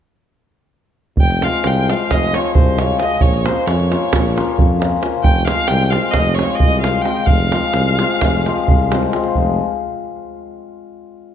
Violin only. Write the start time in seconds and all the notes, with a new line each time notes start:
1.21 G5
1.37 G5
1.44 F5
1.67 G5
1.90 F5
2.12 D#5
2.35 C#5
2.56 C5
2.80 C#5
3.01 D#5
3.21 C#5
3.45 C5
3.66 C#5
5.24 G5
5.47 F5
5.68 G5
5.91 F5
6.12 D#5
6.35 C#5
6.56 D#5
6.81 F5
7.02 G5
7.27 F5